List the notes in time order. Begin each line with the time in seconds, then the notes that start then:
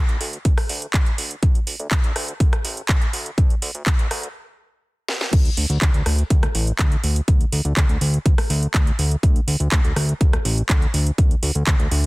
0.09 D2, closed hi-hat
0.21 D2, open hi-hat
0.33 closed hi-hat
0.45 D2, kick, closed hi-hat
0.58 cross-stick, open hi-hat
0.69 D2, open hi-hat
0.82 closed hi-hat
0.94 D2, kick, clap, closed hi-hat
1.06 closed hi-hat
1.18 D2, open hi-hat
1.31 closed hi-hat
1.43 D2, kick, closed hi-hat
1.55 closed hi-hat
1.67 D2, open hi-hat
1.80 D2, closed hi-hat
1.91 D2, kick, clap, closed hi-hat
2.04 D2, closed hi-hat
2.16 D2, cross-stick, open hi-hat
2.28 closed hi-hat
2.40 D2, kick, closed hi-hat
2.53 cross-stick, closed hi-hat
2.65 A1, open hi-hat
2.77 closed hi-hat
2.89 D2, kick, clap, closed hi-hat
3.02 closed hi-hat
3.13 D2, open hi-hat
3.26 closed hi-hat
3.38 D2, kick, closed hi-hat
3.50 closed hi-hat
3.62 D2, open hi-hat
3.75 D2, closed hi-hat
3.86 D2, kick, clap, closed hi-hat
3.99 D2, closed hi-hat
4.11 D2, cross-stick, open hi-hat
4.23 closed hi-hat
5.08 snare
5.21 snare
5.33 D2, kick, closed hi-hat, crash
5.45 closed hi-hat
5.57 D2, open hi-hat
5.70 D2, closed hi-hat
5.81 D2, kick, clap, closed hi-hat
5.94 D2, closed hi-hat
6.06 D2, cross-stick, open hi-hat
6.19 closed hi-hat
6.30 D2, kick, closed hi-hat
6.43 cross-stick, closed hi-hat
6.55 A1, open hi-hat
6.67 closed hi-hat
6.79 D2, kick, clap, closed hi-hat
6.92 closed hi-hat
7.04 D2, open hi-hat
7.16 closed hi-hat
7.28 D2, kick, closed hi-hat
7.41 closed hi-hat
7.52 D2, open hi-hat
7.65 D2, closed hi-hat
7.77 D2, kick, clap, closed hi-hat
7.89 D2, closed hi-hat
8.01 D2, open hi-hat
8.14 closed hi-hat
8.26 D2, kick, closed hi-hat
8.38 cross-stick, open hi-hat
8.50 D2, open hi-hat
8.63 closed hi-hat
8.74 D2, kick, clap, closed hi-hat
8.87 closed hi-hat
8.99 D2, open hi-hat
9.11 closed hi-hat
9.23 D2, kick, closed hi-hat
9.36 closed hi-hat
9.47 D2, open hi-hat
9.60 D2, closed hi-hat
9.72 D2, kick, clap, closed hi-hat
9.84 D2, closed hi-hat
9.96 D2, cross-stick, open hi-hat
10.09 closed hi-hat
10.21 D2, kick, closed hi-hat
10.33 cross-stick, closed hi-hat
10.45 A1, open hi-hat
10.58 closed hi-hat
10.69 D2, kick, clap, closed hi-hat
10.82 closed hi-hat
10.94 D2, open hi-hat
11.07 closed hi-hat
11.18 D2, kick, closed hi-hat
11.31 closed hi-hat
11.43 D2, open hi-hat
11.55 D2, closed hi-hat
11.67 D2, kick, clap, closed hi-hat
11.79 D2, closed hi-hat
11.91 D2, open hi-hat